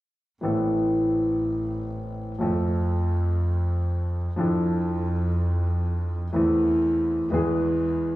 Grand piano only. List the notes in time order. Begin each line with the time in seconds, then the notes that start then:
0.41 A1 A2 E3 B3 C4 A4
2.39 F2 F3 A3 C4 A4
4.36 F2 F3 D4 E4
4.41 A4
6.33 E2 E3 A3 C4 A4
7.30 E2 E3 G#3 B3 G#4